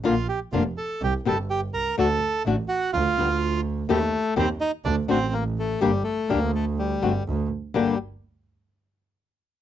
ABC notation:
X:1
M:4/4
L:1/8
Q:1/4=125
K:Gm
V:1 name="Bandoneon"
F G F A G A G B | A2 z ^F =F3 z | A,2 C E D C B, A, | G, A, B, A, G,2 z2 |
G, z6 z |]
V:2 name="Nylon-string guitar"
[D,B,DF] z [D,B,DF] z2 [C,E,G,CG] z2 | [D,A,D^F] z [D,A,DF] z2 [D,G,=B,=F] z2 | [E,G,CG] z [E,G,CG] z2 [D,A,D^F] z2 | [D,G,B,DG] z [D,G,B,DG] z2 [D,A,C^F] z2 |
[G,,D,G,B,DG] z6 z |]
V:3 name="Double bass" clef=bass
B,,, z F,,, z C,, G,,,2 C,, | D,, z A,,, z D,, D,,3 | E,, z E,, z D,, A,,,3 | G,,, z D,,3 G,,, D,, z |
G,,, z6 z |]